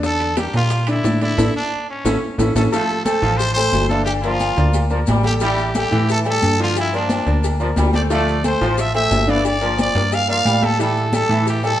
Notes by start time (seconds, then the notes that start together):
Already playing: E2
0.03 D3 D4 A4 D5, high bongo, high conga, maracas
0.20 high bongo, high conga, high timbale, maracas
0.37 G3 G4 A#4, high bongo, high conga, high timbale, maracas
0.53 A#2 G3 F4 G4 A#4, high bongo, high conga, maracas
0.70 high bongo, high conga, high timbale, maracas
0.87 D3 D4 E4 D5, high conga, high timbale, maracas
1.04 A2 D3 D4 D5, high bongo, low bongo, high conga, maracas
1.21 D3 D4 E4 D5, high bongo, high timbale, maracas
1.38 A1 D4 E4 A4, low bongo, high conga, high timbale, maracas
1.56 D4
1.90 C#4
2.05 A1 C#4 E4 A4, low bongo, high conga, high timbale, maracas
2.38 A1 C#4 E4 A4, low bongo, high conga, high timbale, maracas
2.55 A1 C#4 E4 A4, low bongo, high conga, high timbale, maracas
2.72 F3 A3 F4 A4 F5, cowbell, high conga, low agogo, maracas
2.89 high conga, maracas
3.04 A3 A4 C5, cowbell, high conga, low agogo, maracas
3.22 A1 F3 F4 F5, high conga, low agogo, maracas
3.37 C5, cowbell, high conga, low agogo, maracas
3.54 A3 A4 C5, cowbell, high conga, low agogo
3.58 C5
3.72 G1, cowbell, high conga, low timbale, low agogo, maracas
3.89 D3 E3 D4 A4 F5, high conga, maracas
4.05 G4, cowbell, low agogo, maracas
4.22 F3 A#3 F4 A#4 D5, cowbell, high conga, low agogo, maracas
4.40 cowbell, high conga, low agogo, maracas
4.57 D2 A#3 A#4 D5, high conga, maracas
4.73 cowbell, high conga, low agogo, maracas
4.90 F3 A#3 A#4 D5, high conga, maracas
5.07 A1 G3, cowbell, high conga, low timbale, low agogo, maracas
5.23 G3 G4 A4, cowbell, high conga, low agogo, maracas
5.40 E3 G3 E4 G4 E5, cowbell, high conga, low agogo, maracas
5.57 high conga, maracas
5.75 G3 G4 A4, cowbell, high conga, low agogo, maracas
5.91 A2 E3 E4 E5, high conga, low agogo, maracas
6.09 A4, cowbell, high conga, low agogo, maracas
6.25 G3 G4 A4, cowbell, high conga, low agogo, maracas
6.30 A4
6.42 G2, cowbell, high conga, low agogo, maracas
6.59 D3 F3 F4 F5, maracas
6.76 cowbell, high conga, low agogo, maracas
6.80 E4
6.93 F3 A#3 D4 A#4 D5, cowbell, high conga, low agogo, maracas
7.10 cowbell, high conga, low agogo, maracas
7.26 D2 A#3 A#4 D5, high conga, maracas
7.43 cowbell, high conga, low agogo, maracas
7.60 F3 A#3 A#4 D5, high conga, maracas
7.76 D2 G3, cowbell, high conga, low timbale, low agogo, maracas
7.93 A3 A4 C5 D5, cowbell, high conga, low agogo, maracas
8.10 F3 A3 F4 D5 F5, cowbell, low agogo, maracas
8.27 high conga, maracas
8.44 A3 A4 C5, cowbell, high conga, low agogo, maracas
8.61 A1 F3 F4 F5, high conga, low agogo, maracas
8.77 E5, cowbell, high conga, low agogo, maracas
8.94 A3 A4 C5 E5, cowbell, high conga, low agogo, maracas
9.11 G1, cowbell, high conga, low timbale, low agogo, maracas
9.27 D3 E3 D4 D5 F5, high conga, maracas
9.45 D5, cowbell, high conga, low agogo, maracas
9.61 F3 A#3 A#4 D5, cowbell, high conga, low agogo, maracas
9.78 D5, cowbell, high conga, low agogo, maracas
9.95 G2 A#3 A#4 D5, high conga, maracas
10.12 F5, cowbell, high conga, low agogo, maracas
10.28 F3 A#3 A#4 D5 F5, high conga, maracas
10.45 A2 G3, cowbell, high conga, low agogo, maracas
10.62 G3 G4 A4, cowbell, high conga, low agogo, maracas
10.79 E3 G3 E4 A4 E5, cowbell, high conga, low agogo, maracas
10.95 high conga, maracas
11.13 G3 G4 A4, cowbell, high conga, low agogo, maracas
11.29 A2 E3 E4 E5, high conga, low agogo, maracas
11.46 G4, cowbell, high conga, low agogo, maracas
11.63 G3 G4 A4, cowbell, high conga, low agogo, maracas